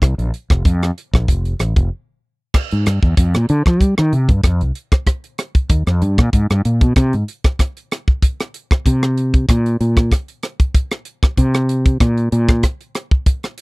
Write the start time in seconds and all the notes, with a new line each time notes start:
0.02 C2, kick, cross-stick, closed hi-hat
0.18 A#1, closed hi-hat
0.34 closed hi-hat
0.50 F1, kick, cross-stick, closed hi-hat
0.65 F2, kick, closed hi-hat
0.83 cross-stick, closed hi-hat
0.98 closed hi-hat
1.13 A#1, kick, cross-stick
1.28 F1, kick, closed hi-hat
1.45 closed hi-hat
1.59 A1, cross-stick, closed hi-hat
1.76 F1, kick, closed hi-hat
2.54 kick, cross-stick, crash
2.71 G#2, closed hi-hat
2.86 G2, cross-stick, closed hi-hat
3.03 E2, kick
3.17 F2, kick, closed hi-hat
3.34 A#2, cross-stick, closed hi-hat
3.49 D3, closed hi-hat
3.66 F3, kick, cross-stick
3.81 G3, kick, closed hi-hat
3.98 D#3, cross-stick
4.13 C3, closed hi-hat
4.29 G2, kick, closed hi-hat
4.43 F2, kick, cross-stick, closed hi-hat
4.61 C2, closed hi-hat
4.75 closed hi-hat
4.92 kick, cross-stick, closed hi-hat
5.07 kick, cross-stick, closed hi-hat
5.24 closed hi-hat
5.38 cross-stick, closed hi-hat
5.55 kick, closed hi-hat
5.69 D#2, kick, closed hi-hat
5.87 F2, cross-stick, closed hi-hat
6.02 G2, closed hi-hat
6.18 A#2, kick, cross-stick
6.33 G#2, kick, closed hi-hat
6.50 G2, cross-stick, closed hi-hat
6.65 A#2, closed hi-hat
6.81 B2, kick, closed hi-hat
6.96 C3, kick, cross-stick, closed hi-hat
7.13 G#2, closed hi-hat
7.28 closed hi-hat
7.44 kick, cross-stick, closed hi-hat
7.59 kick, cross-stick, closed hi-hat
7.77 closed hi-hat
7.91 cross-stick, closed hi-hat
8.08 kick
8.22 kick, closed hi-hat
8.40 cross-stick, closed hi-hat
8.54 closed hi-hat
8.71 kick, cross-stick
8.86 C3, kick, closed hi-hat
9.03 cross-stick
9.18 closed hi-hat
9.34 kick, closed hi-hat
9.49 A#2, kick, cross-stick, closed hi-hat
9.66 closed hi-hat
9.81 A#2, closed hi-hat
9.97 kick, cross-stick, closed hi-hat
10.12 kick, cross-stick, closed hi-hat
10.28 closed hi-hat
10.43 cross-stick, closed hi-hat
10.60 kick, closed hi-hat
10.75 kick, closed hi-hat
10.91 cross-stick, closed hi-hat
11.05 closed hi-hat
11.23 kick, cross-stick
11.37 C3, kick, closed hi-hat
11.54 cross-stick, closed hi-hat
11.69 closed hi-hat
11.86 kick, closed hi-hat
12.00 A#2, kick, cross-stick, closed hi-hat
12.18 closed hi-hat
12.32 A#2, closed hi-hat
12.48 kick, cross-stick, closed hi-hat
12.63 kick, cross-stick, closed hi-hat
12.81 closed hi-hat
12.95 cross-stick, closed hi-hat
13.11 kick
13.26 kick, closed hi-hat
13.43 cross-stick, closed hi-hat
13.58 closed hi-hat